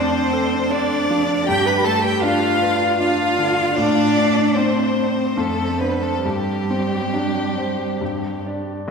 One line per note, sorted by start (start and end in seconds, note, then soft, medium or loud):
0.00 1.44 F2 medium
0.00 0.18 A3 soft
0.00 0.72 C4 medium
0.00 0.56 D4 medium
0.00 0.72 C5 medium
0.00 0.73 C5 medium
0.33 0.95 A4 soft
0.70 1.46 D4 medium
0.70 1.33 D4 soft
0.70 1.48 D5 medium
1.10 1.48 F3 soft
1.47 3.73 G2 medium
1.47 1.67 G4 medium
1.47 1.69 G5 medium
1.65 1.86 B4 medium
1.65 1.86 B5 medium
1.65 1.87 B5 medium
1.84 2.47 A3 soft
1.84 2.04 A4 medium
1.84 2.04 A5 medium
1.84 2.05 A5 medium
2.02 2.23 G4 medium
2.02 2.21 G5 medium
2.02 2.23 G5 medium
2.20 2.85 D4 medium
2.20 2.98 F4 medium
2.20 2.98 F5 medium
2.24 2.99 F5 medium
2.63 3.24 B4 soft
2.99 3.62 D4 medium
2.99 3.74 F4 medium
2.99 3.77 F5 medium
2.99 3.79 F5 medium
3.38 3.77 D3 soft
3.75 5.34 A2 medium
3.75 4.58 D4 medium
3.75 4.57 D5 medium
3.75 4.58 D5 medium
4.17 4.81 A3 soft
4.55 5.38 C4 medium
4.55 5.21 C4 soft
4.55 5.40 C5 medium
4.55 5.41 C5 medium
4.96 5.37 C5 soft
5.37 6.21 F2 medium
5.37 5.80 A3 medium
5.37 5.82 A4 medium
5.79 6.02 B3 medium
5.79 6.20 D4 soft
5.79 6.02 B4 medium
5.79 6.04 B4 medium
5.79 6.20 C5 soft
6.01 6.23 A3 medium
6.01 6.28 A4 medium
6.01 6.24 A4 medium
6.24 7.97 G2 soft
6.24 8.41 G3 medium
6.24 8.42 G4 medium
6.24 8.46 G4 medium
6.70 7.40 C4 soft
7.13 7.83 D4 soft
7.58 8.01 C5 soft
8.01 8.85 G2 soft
8.46 8.84 D4 soft
8.46 8.84 D5 soft